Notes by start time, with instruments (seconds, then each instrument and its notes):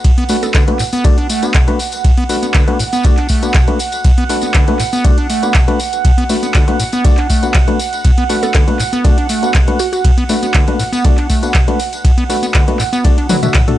Already playing: analog synth pad F#5
0.04 acid bass B2, kick, closed hi-hat, ride, tambourine
0.18 acid bass B3, closed hi-hat
0.29 synth stab A3 D4 F#4 B4, acid bass A3, open hi-hat, tambourine
0.43 acid bass B3, synth pluck A4, closed hi-hat, tambourine
0.54 acid bass D3, synth pluck A4, kick, clap, closed hi-hat, ride, tambourine
0.68 synth stab A3 D4 F#4 B4, acid bass B3, closed hi-hat
0.79 acid bass A2, clap, open hi-hat, tambourine
0.93 acid bass B3, closed hi-hat, tambourine
1.04 acid bass B2, synth stab A3 D4 F#4 D5, kick, closed hi-hat, ride, tambourine
1.18 acid bass D4, closed hi-hat
1.29 acid bass A3, open hi-hat, tambourine
1.43 synth stab A3 D4 F#4 B4, acid bass B3, closed hi-hat, tambourine
1.54 acid bass B2, kick, clap, closed hi-hat, ride, tambourine
1.68 synth stab A3 D4 F#4 B4, acid bass B3, closed hi-hat
1.79 open hi-hat, tambourine
1.92 closed hi-hat, tambourine
2.05 acid bass B2, kick, closed hi-hat, ride, tambourine
2.18 acid bass B3, closed hi-hat
2.29 acid bass A3, synth stab A3 D4 F#4 B4, open hi-hat, tambourine
2.43 acid bass B3, closed hi-hat, tambourine
2.54 acid bass D3, kick, clap, closed hi-hat, ride, tambourine
2.68 synth stab A3 D4 F#4 B4, acid bass B3, closed hi-hat
2.79 acid bass A2, open hi-hat, tambourine
2.93 acid bass B3, closed hi-hat, tambourine
3.03 acid bass B2, synth stab A3 D4 F#4 D5, kick, closed hi-hat, ride, tambourine
3.17 acid bass D4, clap, closed hi-hat
3.29 acid bass A3, kick, open hi-hat, tambourine
3.43 synth stab A3 D4 F#4 B4, acid bass B3, closed hi-hat, tambourine
3.54 acid bass B2, kick, clap, closed hi-hat, ride, tambourine
3.68 synth stab A3 D4 F#4 B4, acid bass B3, closed hi-hat
3.79 open hi-hat, tambourine
3.92 closed hi-hat, tambourine
4.04 acid bass B2, kick, closed hi-hat, ride, tambourine
4.18 acid bass B3, closed hi-hat
4.29 acid bass A3, synth stab A3 D4 F#4 B4, open hi-hat, tambourine
4.41 acid bass B3, closed hi-hat, tambourine
4.54 acid bass D3, kick, clap, closed hi-hat, ride, tambourine
4.68 synth stab A3 D4 F#4 B4, acid bass B3, closed hi-hat
4.79 acid bass A2, clap, open hi-hat, tambourine
4.93 acid bass B3, closed hi-hat, tambourine
5.04 acid bass B2, synth stab A3 D4 F#4 D5, kick, closed hi-hat, ride, tambourine
5.18 acid bass D4, closed hi-hat
5.30 acid bass A3, open hi-hat, tambourine
5.43 synth stab A3 D4 F#4 B4, acid bass B3, closed hi-hat, tambourine
5.54 acid bass B2, kick, clap, closed hi-hat, ride, tambourine
5.68 synth stab A3 D4 F#4 B4, acid bass B3, closed hi-hat
5.79 open hi-hat, tambourine
5.93 closed hi-hat, tambourine
6.04 acid bass B2, kick, closed hi-hat, ride, tambourine
6.18 acid bass B3, closed hi-hat
6.29 synth stab A3 D4 F#4 B4, acid bass A3, open hi-hat, tambourine
6.43 acid bass B3, closed hi-hat, tambourine
6.54 acid bass D3, kick, clap, closed hi-hat, ride, tambourine
6.68 synth stab A3 D4 F#4 B4, acid bass B3, closed hi-hat
6.79 acid bass A2, open hi-hat, tambourine
6.92 acid bass B3, closed hi-hat, tambourine
7.05 acid bass B2, synth stab A3 D4 F#4 D5, kick, closed hi-hat, ride, tambourine
7.17 acid bass D4, clap, closed hi-hat
7.30 acid bass A3, kick, open hi-hat, tambourine
7.43 synth stab A3 D4 F#4 B4, acid bass B3, closed hi-hat, tambourine
7.54 acid bass B2, kick, clap, closed hi-hat, ride, tambourine
7.68 synth stab A3 D4 F#4 B4, acid bass B3, closed hi-hat
7.79 open hi-hat, tambourine
7.93 closed hi-hat, tambourine
8.04 acid bass B2, kick, closed hi-hat, ride, tambourine
8.18 acid bass B3, closed hi-hat
8.29 synth stab A3 D4 F#4 B4, acid bass A3, open hi-hat, tambourine
8.43 acid bass B3, synth pluck A4, closed hi-hat, tambourine
8.54 acid bass D3, synth pluck A4, kick, clap, closed hi-hat, ride, tambourine
8.68 synth stab A3 D4 F#4 B4, acid bass B3, closed hi-hat
8.79 acid bass A2, clap, open hi-hat, tambourine
8.93 acid bass B3, closed hi-hat, tambourine
9.04 acid bass B2, synth stab A3 D4 F#4 D5, kick, closed hi-hat, ride, tambourine
9.18 acid bass D4, closed hi-hat
9.29 acid bass A3, open hi-hat, tambourine
9.43 synth stab A3 D4 F#4 B4, acid bass B3, closed hi-hat, tambourine
9.54 acid bass B2, kick, clap, closed hi-hat, ride, tambourine
9.68 synth stab A3 D4 F#4 B4, acid bass B3, closed hi-hat
9.79 synth pluck F#4, open hi-hat, tambourine
9.93 synth pluck F#4, closed hi-hat, tambourine
10.04 acid bass B2, kick, closed hi-hat, ride, tambourine
10.18 acid bass B3, closed hi-hat
10.29 synth stab A3 D4 F#4 B4, acid bass A3, open hi-hat, tambourine
10.43 acid bass B3, closed hi-hat, tambourine
10.54 acid bass D3, kick, clap, closed hi-hat, ride, tambourine
10.68 synth stab A3 D4 F#4 B4, acid bass B3, closed hi-hat
10.79 acid bass A2, open hi-hat, tambourine
10.93 acid bass B3, closed hi-hat, tambourine
11.04 acid bass B2, synth stab A3 D4 F#4 D5, kick, closed hi-hat, ride, tambourine
11.18 acid bass D4, clap, closed hi-hat
11.30 acid bass A3, kick, open hi-hat, tambourine
11.43 synth stab A3 D4 F#4 B4, acid bass B3, closed hi-hat, tambourine
11.54 acid bass B2, kick, clap, closed hi-hat, ride, tambourine
11.68 synth stab A3 D4 F#4 B4, acid bass B3, closed hi-hat
11.79 open hi-hat, tambourine
11.93 closed hi-hat, tambourine
12.04 acid bass B2, kick, closed hi-hat, ride, tambourine
12.18 acid bass B3, closed hi-hat
12.29 acid bass A3, synth stab A3 D4 F#4 B4, open hi-hat, tambourine
12.43 acid bass B3, closed hi-hat, tambourine
12.54 acid bass D3, kick, clap, closed hi-hat, ride, tambourine
12.68 synth stab A3 D4 F#4 B4, acid bass B3, closed hi-hat
12.79 acid bass A2, clap, open hi-hat, tambourine
12.93 acid bass B3, closed hi-hat, tambourine
13.04 acid bass B2, synth stab A3 D4 F#4 D5, kick, closed hi-hat, ride, tambourine
13.18 acid bass D4, closed hi-hat
13.29 acid bass F#3, synth stab A3 D4 F#4 B4, open hi-hat, high tom, tambourine
13.43 acid bass B2, synth stab A3 D4 F#4 E5, closed hi-hat, high tom, tambourine
13.54 acid bass D3, kick, clap, closed hi-hat, mid tom, ride, tambourine
13.68 synth stab A3 D4 F#4 A4, closed hi-hat, mid tom